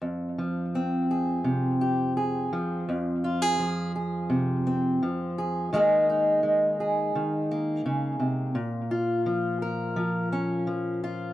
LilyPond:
\new Staff \with { instrumentName = "Steel-string acoustic guitar" } { \time 4/4 \key f \minor \tempo 4 = 85 << { r4 c'8 aes'4 g'8 aes'4 | r8 f'16 aes'8. aes'4 c'4 aes'8 | <aes bes ees' aes'>8 ees'4 aes'4 bes4.~ | bes8 f'4 bes'4 des'4 f'8 | } \\ { f,8 f4. c4. f8 | f,4 f4 c4 f4 | ees4 aes4 ees4 des8 c8 | bes,4 f4 f4 f4 | } >> }